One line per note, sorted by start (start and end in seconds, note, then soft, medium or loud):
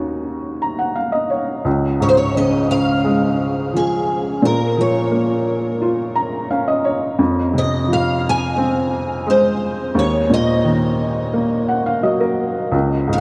0.00 1.62 D#2 soft
0.00 1.62 C#4 soft
0.00 1.62 D#4 soft
0.00 1.62 F#4 soft
0.62 0.78 A#5 soft
0.79 0.95 F#5 soft
0.96 1.12 F5 soft
1.12 1.29 D#5 soft
1.30 1.63 C#5 soft
1.65 4.39 C#2 medium
2.00 3.35 G#2 soft
2.00 2.08 C#5 medium
2.09 2.15 C5 medium
2.17 2.35 C#5 medium
2.35 3.70 C#3 soft
2.35 2.70 D#5 medium
2.71 3.70 F5 medium
3.04 4.39 G#3 soft
3.73 4.41 F3 soft
3.73 4.45 G#4 medium
4.42 7.16 A#2 medium
4.42 4.80 A#4 medium
4.77 6.12 F3 soft
4.77 6.83 C#5 medium
5.11 6.46 A#3 soft
5.82 7.16 F4 soft
6.16 6.48 A#5 soft
6.50 7.18 C#4 soft
6.50 6.67 F5 medium
6.68 6.84 D#5 medium
6.84 7.17 C#5 medium
7.19 9.92 F2 medium
7.54 8.88 C3 soft
7.58 7.92 D#5 medium
7.87 9.23 F3 soft
7.93 8.23 F5 medium
8.29 9.26 G#5 medium
8.58 9.92 C4 soft
9.27 9.94 G#3 soft
9.27 9.98 C5 medium
9.95 12.68 D#2 medium
9.99 10.33 C#5 medium
10.30 11.65 A#2 soft
10.30 12.36 D#5 medium
10.64 11.99 D#3 soft
11.33 12.69 A#3 soft
11.68 11.85 F#5 medium
11.86 12.03 F5 medium
12.03 12.71 F#3 soft
12.03 12.20 D#5 soft
12.20 12.69 A#4 medium
12.72 13.20 C#2 medium
13.07 13.20 G#2 soft
13.13 13.18 F5 medium